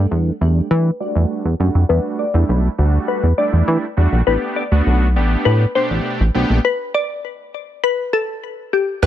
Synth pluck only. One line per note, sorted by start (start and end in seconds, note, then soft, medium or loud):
0.00 0.74 D5 loud
0.71 1.01 B4 loud
1.00 1.86 D5 loud
1.89 2.20 B4 loud
2.19 3.11 D5 loud
3.08 3.39 B4 loud
3.38 4.30 D5 loud
4.27 4.40 B4 loud
4.56 5.48 D5 loud
5.45 5.76 B4 loud
5.75 6.67 C5 loud
6.65 6.92 B4 loud
6.94 7.86 D5 loud
7.84 8.14 B4 loud
8.13 8.69 A4 medium
8.73 9.01 G4 medium